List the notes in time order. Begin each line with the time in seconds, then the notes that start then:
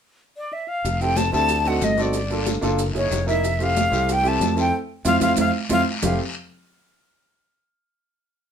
0.37 D5
0.53 E5
0.68 F5
0.85 F1, high bongo, high conga, long guiro, maracas
1.01 C4 E4 G4 A4 G5, high conga, maracas
1.16 A5, high bongo, high conga, short guiro, maracas
1.31 D2 C4 E4 G4 A4 A5, short guiro, maracas
1.48 high bongo, high conga, long guiro, maracas
1.64 C4 D#4 F#4 A4 F#5, high conga, maracas
1.82 G1 D#5, high bongo, low bongo, high conga, short guiro, maracas
1.96 C4 D#4 F#4 A4, short guiro, maracas
2.01 D5
2.13 high bongo, high conga, long guiro, maracas
2.30 A#3 D4 F4 A4, high bongo, high conga, maracas
2.46 high bongo, high conga, short guiro, maracas
2.61 F#1 A#3 D4 F4 A4, high bongo, high conga, short guiro, maracas
2.79 high bongo, high conga, long guiro, maracas
2.93 F#1 A#3 D#4 E4 G#4 C#5, high conga, maracas
3.11 F1, high bongo, low bongo, high conga, short guiro, maracas
3.27 A#3 D#4 E4 A#4 E5, high bongo, high conga, short guiro, maracas
3.44 high bongo, high conga, long guiro, maracas
3.59 A3 C4 E4 G4 F5, high conga, maracas
3.76 high bongo, high conga, short guiro, maracas
3.90 C2 A3 C4 E4 G4, short guiro, maracas
4.09 G5, high bongo, high conga, long guiro, maracas
4.22 A3 C4 E4 G4, high conga, maracas
4.28 A5
4.40 F2, high bongo, low bongo, high conga, short guiro, maracas
4.55 A3 C4 E4 A4, short guiro, maracas
4.59 G5
5.05 F2 C4 E4 F4 F5, low bongo, high conga, long guiro, maracas
5.20 F2 C4 E4 F4 F5, low bongo, high conga, long guiro, maracas
5.36 F2 C4 E4 F4 F5, low bongo, high conga, long guiro, maracas
5.69 F2 C4 E4 F4 F5, low bongo, high conga, long guiro, maracas
6.02 F1 A3 C4 E4 G4 F5, low bongo, low conga, long guiro, maracas